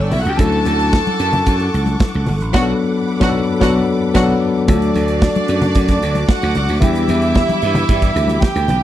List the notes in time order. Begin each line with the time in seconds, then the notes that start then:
Already playing: G3 B3 C#4 E4 A4 G5 C#6 E6
0.02 D4 D5
0.11 B1 E4 E5, open hi-hat, low conga
0.20 F#4 F#5
0.25 C#2 G4 G5, closed hi-hat
0.37 D2 F#3 C#4 D4 E4 A4 F#5 A5 C#6 D6, kick, closed hi-hat, muted conga, low conga
0.52 muted conga
0.65 D2, closed hi-hat, high conga
0.79 closed hi-hat
0.93 kick, snare, muted conga
1.07 muted conga, high conga
1.20 F#2, closed hi-hat
1.33 closed hi-hat, low conga
1.46 F#2, kick, closed hi-hat, muted conga
1.60 closed hi-hat, muted conga
1.74 C#2, closed hi-hat
1.86 closed hi-hat, high conga
2.00 kick, snare, muted conga, high conga
2.14 C#2, muted conga
2.27 G1, open hi-hat, low conga
2.41 A1, closed hi-hat
2.53 B1 F#3 B3 D4 F#4 A4 F#5 B5 D6, kick, snare, crash
2.62 A4
3.20 B1 F#3 B3 D4 F#4 F#5, kick, snare
3.29 A4
3.60 B1 F#3 B3 D4 F#4 F#5, kick, snare
3.70 A4
4.14 B1 F#3 B3 D4 F#4 F#5, kick, snare, crash
4.23 A4
4.67 D2 F#3 A3 D4 F4 F#4 A4 D5 A5 D6, kick, closed hi-hat, low conga
4.76 F#4
4.82 closed hi-hat
4.95 D2, closed hi-hat, high conga
5.08 closed hi-hat
5.22 kick, snare
5.35 closed hi-hat, muted conga, high conga
5.48 F#2, closed hi-hat
5.61 closed hi-hat, low conga
5.75 F#2, kick, closed hi-hat
5.88 kick, snare, closed hi-hat, muted conga
6.02 D2, closed hi-hat
6.15 closed hi-hat, high conga
6.28 F#4 F#5, kick, snare, high conga
6.42 D2, closed hi-hat
6.55 C#2, closed hi-hat, low conga
6.69 D2, closed hi-hat
6.81 E2 E3 G3 B3 D4 E4 G4 E5 B5, kick, closed hi-hat, muted conga, low conga
6.95 closed hi-hat, muted conga
7.08 E2, closed hi-hat, high conga
7.22 closed hi-hat
7.35 kick, snare, muted conga
7.49 closed hi-hat, high conga
7.62 G2, closed hi-hat
7.75 closed hi-hat, low conga
7.89 G2, kick, closed hi-hat
8.02 kick, closed hi-hat
8.16 D2, closed hi-hat
8.28 closed hi-hat, high conga
8.41 G4 G5, kick, snare, high conga
8.56 D2, closed hi-hat, muted conga
8.68 B1, closed hi-hat, low conga